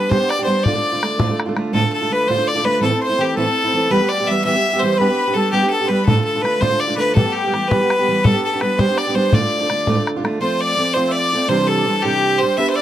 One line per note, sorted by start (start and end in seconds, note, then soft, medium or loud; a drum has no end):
0.00 0.10 D4 medium
0.00 0.11 G4 medium
0.00 0.11 B4 medium
0.09 0.20 G3 medium
0.09 0.20 B3 medium
0.09 0.20 D4 medium
0.09 0.18 G4 medium
0.09 0.30 C5 medium
0.09 0.28 C5 medium
0.09 bodhran medium
0.19 0.40 B3 soft
0.19 0.38 G4 soft
0.29 0.43 D5 loud
0.29 0.48 D5 medium
0.29 bodhran medium
0.39 0.47 B3 soft
0.39 0.47 D4 medium
0.39 0.47 G4 medium
0.44 0.65 G3 medium
0.44 0.65 C5 medium
0.44 0.66 C5 medium
0.48 0.65 B3 medium
0.48 0.66 D4 medium
0.48 0.66 G4 medium
0.64 0.75 D2 medium
0.64 0.75 A2 medium
0.64 0.75 D3 medium
0.64 0.75 A3 medium
0.64 0.74 D4 medium
0.64 0.74 F4 medium
0.64 1.38 D5 medium
0.64 1.36 D5 medium
0.64 bodhran medium
0.75 0.94 D3 soft
0.75 0.94 A3 soft
0.75 0.92 D4 soft
0.75 0.91 F4 medium
0.92 1.00 D3 soft
0.92 1.01 A3 soft
0.92 1.02 D4 soft
0.92 1.01 F4 medium
1.01 1.18 D3 medium
1.01 1.18 A3 medium
1.01 1.19 D4 medium
1.01 1.19 F4 medium
1.01 bodhran medium
1.18 1.29 D2 medium
1.18 1.29 A2 medium
1.18 1.29 D3 medium
1.18 1.29 A3 medium
1.18 1.29 D4 medium
1.18 1.27 F4 medium
1.18 bodhran medium
1.29 1.47 D3 soft
1.29 1.47 A3 medium
1.29 1.46 D4 medium
1.29 1.44 F4 medium
1.40 bodhran medium
1.45 1.54 D3 soft
1.45 1.55 A3 medium
1.45 1.56 D4 medium
1.45 1.55 F4 medium
1.55 1.72 D3 medium
1.55 1.73 A3 medium
1.55 1.73 D4 medium
1.55 1.74 F4 medium
1.55 bodhran medium
1.73 1.83 D2 medium
1.73 1.83 A2 medium
1.73 1.83 D3 medium
1.73 1.83 A3 medium
1.73 1.82 D4 medium
1.73 1.81 F4 medium
1.73 1.91 A4 medium
1.73 1.93 A4 medium
1.82 2.02 D3 soft
1.82 2.01 A3 soft
1.82 2.01 D4 soft
1.82 1.99 F4 soft
1.92 2.13 A4 medium
1.92 2.12 A4 medium
2.01 2.08 D3 soft
2.01 2.09 A3 soft
2.01 2.10 D4 medium
2.01 2.10 F4 medium
2.09 2.27 D3 medium
2.09 2.28 A3 medium
2.09 2.28 D4 medium
2.09 2.29 F4 medium
2.09 2.29 B4 medium
2.13 2.30 B4 medium
2.28 2.38 D2 medium
2.28 2.38 A2 medium
2.28 2.38 D3 medium
2.28 2.38 A3 medium
2.28 2.36 D4 medium
2.28 2.36 F4 medium
2.28 2.49 C5 loud
2.28 2.48 C5 medium
2.38 2.56 D3 soft
2.38 2.55 A3 soft
2.38 2.55 D4 medium
2.38 2.54 F4 medium
2.47 2.66 D5 loud
2.47 2.66 D5 medium
2.55 2.62 D3 soft
2.55 2.64 A3 medium
2.55 2.65 D4 medium
2.55 2.64 F4 medium
2.64 2.81 D3 medium
2.64 2.81 A3 medium
2.64 2.82 D4 medium
2.64 2.82 F4 medium
2.64 2.82 B4 loud
2.64 2.83 B4 medium
2.80 2.91 A2 medium
2.80 2.91 E3 medium
2.80 2.90 A3 medium
2.80 2.91 C4 medium
2.80 2.89 E4 medium
2.80 3.00 A4 medium
2.90 3.09 A3 soft
2.90 3.11 C4 soft
2.90 3.08 E4 medium
3.01 3.19 C5 medium
3.01 3.22 C5 loud
3.09 3.19 A3 soft
3.09 3.18 C4 soft
3.09 3.18 E4 medium
3.18 3.36 E3 medium
3.18 3.37 A3 medium
3.18 3.36 C4 medium
3.18 3.37 E4 medium
3.18 3.35 G4 medium
3.18 3.37 G4 medium
3.36 3.46 A2 medium
3.36 3.46 E3 medium
3.36 3.47 A3 medium
3.36 3.46 C4 medium
3.36 3.44 E4 medium
3.36 3.92 A4 medium
3.36 3.92 A4 loud
3.46 3.64 A3 medium
3.46 3.66 C4 soft
3.46 3.63 E4 soft
3.64 3.74 A3 soft
3.64 3.74 C4 soft
3.64 3.73 E4 medium
3.74 3.89 E3 medium
3.74 3.91 A3 medium
3.74 3.90 C4 medium
3.74 3.92 E4 medium
3.90 4.00 E3 medium
3.90 4.00 G3 medium
3.90 4.01 B3 medium
3.90 4.00 G4 medium
3.90 4.10 B4 medium
3.90 4.11 B4 medium
4.01 4.20 G3 soft
4.01 4.20 B3 soft
4.01 4.19 G4 medium
4.09 4.28 D5 medium
4.09 4.29 D5 medium
4.20 4.29 G3 soft
4.20 4.29 B3 medium
4.20 4.28 G4 medium
4.27 4.44 E3 soft
4.27 4.45 G3 medium
4.27 4.43 E5 medium
4.27 4.44 E5 medium
4.31 4.46 B3 medium
4.31 4.46 G4 medium
4.44 4.54 E3 medium
4.44 4.55 G3 medium
4.44 4.56 B3 medium
4.44 4.54 G4 medium
4.44 4.81 E5 loud
4.44 4.83 E5 medium
4.55 4.75 G3 soft
4.55 4.74 B3 soft
4.55 4.72 G4 medium
4.73 4.83 G3 soft
4.73 4.83 B3 medium
4.73 4.82 G4 medium
4.79 4.99 E3 medium
4.79 4.99 C5 loud
4.79 4.98 C5 medium
4.84 4.98 G3 medium
4.84 4.99 B3 medium
4.84 5.00 G4 medium
4.97 5.09 G3 medium
4.97 5.09 B3 medium
4.97 5.09 D4 medium
4.97 5.08 G4 medium
4.97 5.35 B4 loud
4.97 5.37 B4 medium
5.10 5.29 B3 soft
5.10 5.28 D4 soft
5.10 5.26 G4 soft
5.27 5.34 B3 soft
5.27 5.36 D4 soft
5.27 5.36 G4 medium
5.33 5.51 G3 medium
5.33 5.52 B3 soft
5.33 5.53 D4 soft
5.33 5.51 A4 medium
5.33 5.54 A4 medium
5.38 5.54 G4 medium
5.51 5.63 G3 medium
5.51 5.63 B3 medium
5.51 5.63 D4 medium
5.51 5.69 G4 loud
5.51 5.72 G4 medium
5.56 5.62 G4 medium
5.63 5.83 B3 soft
5.63 5.82 D4 soft
5.63 5.80 G4 medium
5.70 5.90 A4 medium
5.70 5.86 A4 medium
5.81 5.89 B3 medium
5.81 5.91 D4 medium
5.81 5.90 G4 medium
5.86 6.07 G3 medium
5.86 6.05 B4 medium
5.86 5.90 C5 soft
5.90 6.08 B3 medium
5.90 6.08 D4 medium
5.90 6.09 G4 medium
5.90 6.09 B4 medium
6.05 6.18 D2 medium
6.05 6.17 A2 medium
6.05 6.18 D3 medium
6.05 6.24 A4 medium
6.05 6.23 A4 medium
6.05 bodhran medium
6.10 6.17 A3 medium
6.10 6.16 D4 medium
6.10 6.15 F4 medium
6.16 6.36 D3 soft
6.16 6.35 A3 soft
6.16 6.34 D4 soft
6.16 6.34 F4 soft
6.25 6.43 A4 medium
6.25 6.42 A4 medium
6.35 6.42 D3 soft
6.35 6.43 A3 soft
6.35 6.44 D4 medium
6.35 6.44 F4 soft
6.42 6.60 D3 soft
6.42 6.60 A3 medium
6.42 6.60 D4 medium
6.42 6.62 B4 medium
6.42 bodhran medium
6.46 6.60 F4 medium
6.60 6.70 D2 medium
6.60 6.71 A2 medium
6.60 6.71 D3 medium
6.60 6.71 A3 medium
6.60 6.70 D4 medium
6.60 6.69 F4 medium
6.60 6.81 C5 loud
6.60 6.80 C5 medium
6.60 bodhran medium
6.70 6.89 D3 soft
6.70 6.88 A3 soft
6.70 6.88 D4 soft
6.70 6.86 F4 medium
6.80 6.97 D5 medium
6.80 6.99 D5 medium
6.87 6.95 D3 soft
6.87 6.96 A3 soft
6.87 6.97 D4 medium
6.87 6.97 F4 medium
6.95 7.15 D3 medium
6.95 7.15 A3 medium
6.95 7.16 D4 medium
6.95 7.13 B4 medium
6.95 7.14 B4 loud
6.99 7.16 F4 medium
7.15 7.25 E3 medium
7.15 7.25 G3 medium
7.15 7.25 B3 medium
7.15 7.23 G4 medium
7.15 7.35 A4 medium
7.15 7.34 A4 medium
7.15 bodhran loud
7.25 7.45 G3 soft
7.25 7.44 B3 medium
7.25 7.43 G4 medium
7.32 7.70 G4 medium
7.32 7.67 G4 medium
7.44 7.52 G3 soft
7.44 7.53 B3 soft
7.44 7.53 G4 medium
7.52 7.69 E3 medium
7.52 7.70 G3 soft
7.52 7.71 B3 soft
7.52 7.72 G4 medium
7.52 bodhran medium
7.68 7.80 E3 medium
7.68 7.80 G3 medium
7.68 8.26 B4 loud
7.68 8.26 B4 medium
7.68 bodhran medium
7.72 7.81 B3 medium
7.72 7.80 G4 medium
7.81 8.00 G3 soft
7.81 8.00 B3 soft
7.81 7.98 G4 soft
7.90 bodhran medium
7.99 8.08 G3 soft
7.99 8.08 B3 medium
7.99 8.07 G4 medium
8.08 8.25 E3 medium
8.08 8.24 G3 medium
8.08 8.25 B3 medium
8.08 8.26 G4 medium
8.24 8.34 G3 medium
8.24 8.35 B3 medium
8.24 8.34 D4 medium
8.24 8.33 G4 medium
8.24 8.62 A4 medium
8.24 8.43 A4 loud
8.24 bodhran medium
8.34 8.54 B3 soft
8.34 8.53 D4 medium
8.34 8.52 G4 medium
8.45 8.62 A4 medium
8.53 8.62 B3 soft
8.53 8.62 D4 soft
8.53 8.61 G4 medium
8.60 8.77 G3 soft
8.60 8.77 B3 medium
8.60 8.81 B4 medium
8.60 8.79 B4 medium
8.60 bodhran medium
8.64 8.79 D4 medium
8.64 8.79 G4 medium
8.77 8.88 G3 medium
8.77 8.88 B3 medium
8.77 8.89 D4 medium
8.77 8.87 G4 medium
8.77 8.96 C5 medium
8.77 8.99 C5 loud
8.77 bodhran medium
8.88 9.08 B3 soft
8.88 9.08 D4 soft
8.88 9.06 G4 soft
8.97 9.14 D5 medium
8.97 9.17 D5 medium
8.97 bodhran medium
9.07 9.15 B3 medium
9.07 9.15 D4 medium
9.07 9.16 G4 medium
9.14 9.32 G3 medium
9.14 9.32 B3 medium
9.14 9.32 D4 medium
9.14 9.33 G4 medium
9.14 9.36 C5 medium
9.14 9.33 C5 medium
9.31 9.42 D2 medium
9.31 9.42 A2 medium
9.31 9.42 D3 medium
9.31 9.41 A3 medium
9.31 9.40 D4 medium
9.31 9.40 F4 medium
9.31 10.03 D5 medium
9.31 10.07 D5 medium
9.31 bodhran medium
9.41 9.61 D3 soft
9.41 9.61 A3 soft
9.41 9.59 D4 soft
9.41 9.59 F4 medium
9.60 9.69 D3 soft
9.60 9.69 A3 soft
9.60 9.69 D4 medium
9.60 9.69 F4 soft
9.70 9.87 D3 medium
9.70 9.87 A3 medium
9.70 9.88 D4 medium
9.70 9.88 F4 medium
9.70 bodhran medium
9.87 9.97 D2 medium
9.87 9.97 A2 medium
9.87 9.97 D3 medium
9.87 9.97 A3 medium
9.87 9.96 D4 medium
9.87 9.94 F4 medium
9.87 bodhran medium
9.96 10.16 A3 soft
9.96 10.16 D4 medium
9.96 10.15 F4 medium
10.00 10.17 D3 soft
10.07 bodhran medium
10.16 10.21 D3 medium
10.16 10.23 A3 medium
10.16 10.24 D4 medium
10.16 10.25 F4 medium
10.22 10.40 D3 medium
10.22 10.41 A3 medium
10.22 10.42 D4 medium
10.22 10.41 F4 medium
10.22 bodhran medium
10.40 10.76 F3 medium
10.40 10.78 A3 medium
10.40 10.77 C4 medium
10.40 10.79 F4 medium
10.40 10.62 C5 medium
10.40 10.61 C5 medium
10.60 10.95 D5 loud
10.60 10.97 D5 medium
10.77 10.95 F3 medium
10.77 10.95 A3 soft
10.77 10.96 C4 soft
10.77 10.95 F4 medium
10.93 11.33 A3 medium
10.93 11.32 F4 medium
10.93 11.14 C5 loud
10.93 11.08 C5 medium
10.98 11.34 F3 medium
10.98 11.33 C4 medium
11.09 11.50 D5 loud
11.09 11.15 E5 medium
11.16 11.48 D5 medium
11.33 11.50 A3 medium
11.33 11.49 C4 soft
11.33 11.50 F4 medium
11.48 11.86 C3 medium
11.48 11.84 E3 medium
11.48 11.87 G3 medium
11.48 11.87 D4 medium
11.48 11.89 G4 medium
11.48 11.69 C5 loud
11.48 11.68 C5 medium
11.67 12.04 A4 loud
11.67 11.96 A4 medium
11.86 12.04 E3 soft
11.86 12.04 G3 medium
11.86 12.03 D4 medium
11.86 12.03 G4 medium
11.99 12.40 G4 loud
11.99 12.05 A4 medium
12.04 12.42 C3 medium
12.04 12.41 E3 medium
12.04 12.43 G3 medium
12.04 12.41 D4 medium
12.04 12.41 G4 medium
12.04 12.42 G4 medium
12.39 12.58 G4 medium
12.39 12.58 C5 medium
12.39 12.59 C5 medium
12.43 12.59 G3 soft
12.43 12.58 D4 medium
12.57 12.82 B3 medium
12.57 12.82 D4 medium
12.57 12.82 G4 medium
12.57 12.82 B4 medium
12.57 12.69 E5 loud
12.57 12.78 E5 medium
12.70 12.77 C5 medium
12.76 12.82 D5 loud
12.76 12.82 D5 medium